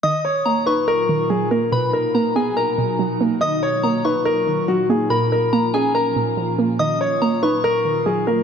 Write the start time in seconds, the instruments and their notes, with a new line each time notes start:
0.03 ambient pad A#2 F#3 D#4 F4, synth pluck D#3, grand piano D#5, synth bell D#6
0.25 grand piano C#5
0.46 synth pluck A#3, synth bell A#5
0.66 synth pluck D#4, grand piano B4, synth bell C#6
0.88 grand piano A#4
1.09 synth pluck D#3
1.30 synth pluck F#3, grand piano G#4
1.51 synth pluck A#3, grand piano A#4
1.72 synth pluck B2, ambient pad B2 F#3 F#4, grand piano B4, synth bell B5
1.93 grand piano A#4
2.15 synth pluck A#3, synth bell A#5
2.36 synth pluck B3, grand piano G#4, synth bell G#5
2.57 grand piano A#4, synth bell A#5
2.78 synth pluck B2
2.99 synth pluck F#3
3.21 synth pluck A#3
3.41 ambient pad A#2 F#3 F4, synth pluck D#3, grand piano D#5, synth bell D#6
3.63 grand piano C#5
3.83 synth pluck A#3, synth bell A#5
4.05 synth pluck D#4, grand piano B4, synth bell C#6
4.25 grand piano A#4
4.47 synth pluck D#3
4.68 synth pluck F#3, grand piano F#4
4.89 synth pluck A#3, grand piano G#4
5.10 synth pluck A#2, ambient pad F3 C#4 F4, grand piano A#4, synth bell B5
5.32 grand piano A#4
5.53 synth pluck A#3, synth bell A#5
5.74 synth pluck C#4, grand piano G#4, synth bell G#5
5.95 grand piano A#4, synth bell A#5
6.16 synth pluck A#2
6.37 synth pluck F3
6.59 synth pluck A#3
6.79 synth pluck D#3, ambient pad F#3 D#4 F4, grand piano D#5, synth bell D#6
7.01 grand piano C#5
7.22 synth pluck A#3, synth bell A#5
7.43 synth pluck D#4, grand piano B4, synth bell C#6
7.64 grand piano A#4
7.85 synth pluck D#3
8.06 synth pluck F#3, grand piano G#4
8.27 synth pluck A#3, grand piano A#4